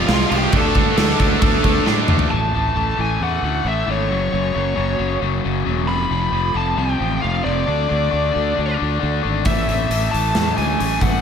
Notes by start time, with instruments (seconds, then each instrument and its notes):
Already playing: lead electric guitar F5
0.08 fingered electric bass C2, overdriven electric guitar F2 C3 F3, snare, crash
0.13 lead electric guitar F4 F5
0.20 snare
0.31 fingered electric bass C2, overdriven electric guitar F2 C3 F3, crash
0.35 lead electric guitar G4 G5
0.52 fingered electric bass D2, overdriven electric guitar D3 A3 D4, kick, crash
0.57 lead electric guitar A4
0.61 lead electric guitar A5
0.75 overdriven electric guitar D3 A3 D4, kick, crash
0.96 fingered electric bass D2, overdriven electric guitar D3 A3 D4, snare, crash
1.19 fingered electric bass D2, overdriven electric guitar D3 A3 D4, kick, crash
1.42 fingered electric bass D2, overdriven electric guitar D3 A3 D4, kick, crash
1.63 fingered electric bass D2, overdriven electric guitar D3 A3 D4, kick, crash
1.85 fingered electric bass A2, overdriven electric guitar D3 A3 D4, snare
2.08 fingered electric bass D2, overdriven electric guitar D3 A3 D4, mid tom
2.19 floor tom
2.29 fingered electric bass A1, overdriven electric guitar A2 E3 A3, lead electric guitar A5
2.54 fingered electric bass A1, overdriven electric guitar A2 E3 A3
2.75 fingered electric bass A1, overdriven electric guitar A2 E3 A3
2.97 fingered electric bass A1, overdriven electric guitar A2 E3 A3, clean electric guitar E4, lead electric guitar G#5
3.20 fingered electric bass E2, overdriven electric guitar A2 E3 A3, clean electric guitar C#4, lead electric guitar F#5
3.42 fingered electric bass D2, overdriven electric guitar A2 E3 A3
3.64 fingered electric bass A1, overdriven electric guitar A2 E3 A3, clean electric guitar C#4, lead electric guitar E5
3.86 fingered electric bass G#1, overdriven electric guitar A2 E3 A3
3.91 lead electric guitar C#5
4.09 fingered electric bass F#1, overdriven electric guitar F#2 C#3 F#3
4.31 fingered electric bass F#1, overdriven electric guitar F#2 C#3 F#3
4.54 fingered electric bass F#1, overdriven electric guitar F#2 C#3 F#3, clean electric guitar A#3
4.75 fingered electric bass F#1, overdriven electric guitar F#2 C#3 F#3, clean electric guitar F#4
4.98 fingered electric bass F#1, overdriven electric guitar F#2 C#3 F#3, clean electric guitar C#4
5.21 fingered electric bass F#1, overdriven electric guitar F#2 C#3 F#3
5.44 fingered electric bass F#1, overdriven electric guitar F#2 C#3 F#3, clean electric guitar C#4
5.65 fingered electric bass E1, overdriven electric guitar F#2 C#3 F#3, clean electric guitar A#3
5.87 fingered electric bass F1, overdriven electric guitar F2 C3 F3, lead electric guitar B5
6.10 fingered electric bass F1, overdriven electric guitar F2 C3 F3
6.31 fingered electric bass F1, overdriven electric guitar F2 C3 F3, clean electric guitar A3
6.53 fingered electric bass F1, overdriven electric guitar F2 C3 F3, clean electric guitar F4, lead electric guitar A5
6.77 fingered electric bass C2, overdriven electric guitar F2 C3 F3, clean electric guitar C4, lead electric guitar G5
7.00 fingered electric bass A1, overdriven electric guitar F2 C3 F3
7.21 fingered electric bass F1, overdriven electric guitar F2 C3 F3, clean electric guitar C4, lead electric guitar F5
7.44 fingered electric bass F1, overdriven electric guitar F2 C3 F3, clean electric guitar A3, lead electric guitar D5
7.67 fingered electric bass D2, overdriven electric guitar D3 A3 D4
7.88 fingered electric bass D2, overdriven electric guitar D3 A3 D4
8.11 fingered electric bass D2, overdriven electric guitar D3 A3 D4
8.32 fingered electric bass D2, overdriven electric guitar D3 A3 D4, clean electric guitar F4
8.55 fingered electric bass D2, overdriven electric guitar D3 A3 D4
8.77 overdriven electric guitar D3 A3 D4
8.81 fingered electric bass D2
8.99 fingered electric bass D2, overdriven electric guitar D3 A3 D4
9.22 fingered electric bass G#1, overdriven electric guitar D3 A3 D4
9.45 fingered electric bass A1, overdriven electric guitar A2 E3 A3, lead electric guitar E5, kick, open hi-hat
9.68 fingered electric bass A1, overdriven electric guitar A2 E3 A3, open hi-hat
9.90 fingered electric bass A1, overdriven electric guitar A2 E3 A3, open hi-hat
10.11 fingered electric bass A1, overdriven electric guitar A2 E3 A3, clean electric guitar E4, lead electric guitar A5, open hi-hat
10.34 fingered electric bass E2, overdriven electric guitar A2 E3 A3, clean electric guitar C#4, snare, open hi-hat
10.57 fingered electric bass D2, overdriven electric guitar A2 E3 A3, lead electric guitar G#5, open hi-hat
10.78 fingered electric bass A1, overdriven electric guitar A2 E3 A3, clean electric guitar C#4, open hi-hat
11.01 fingered electric bass A1, overdriven electric guitar A2 E3 A3, lead electric guitar F#5, kick, open hi-hat